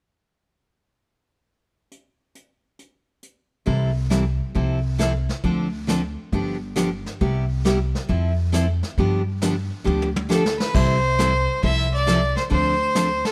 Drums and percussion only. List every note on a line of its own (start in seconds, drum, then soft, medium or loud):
1.91 closed hi-hat medium
2.35 closed hi-hat medium
2.79 closed hi-hat soft
3.23 closed hi-hat medium
3.67 brush sweep soft
3.67 kick soft
4.11 snare medium
4.11 hi-hat pedal medium
4.56 brush sweep soft
4.56 kick soft
5.00 snare medium
5.00 hi-hat pedal soft
5.29 snare soft
5.44 brush sweep soft
5.44 kick soft
5.88 snare medium
5.88 hi-hat pedal medium
6.33 brush sweep soft
6.33 kick soft
6.76 snare medium
6.76 hi-hat pedal medium
7.06 snare soft
7.21 brush sweep soft
7.21 kick soft
7.65 snare medium
7.65 hi-hat pedal medium
7.95 snare soft
8.09 brush sweep soft
8.09 kick soft
8.54 snare soft
8.54 hi-hat pedal medium
8.83 snare soft
8.97 brush sweep soft
8.97 kick soft
9.42 snare medium
9.42 hi-hat pedal medium
9.87 high tom soft
10.02 high tom soft
10.16 high tom medium
10.31 snare medium
10.31 hi-hat pedal medium
10.46 snare medium
10.60 snare medium
10.75 brush sweep soft
10.75 kick medium
10.75 crash medium
11.19 snare medium
11.19 hi-hat pedal medium
11.63 brush sweep soft
11.63 kick soft
12.08 snare medium
12.08 hi-hat pedal medium
12.36 snare soft
12.51 brush sweep soft
12.51 kick soft
12.95 snare medium
12.95 hi-hat pedal medium
13.25 snare medium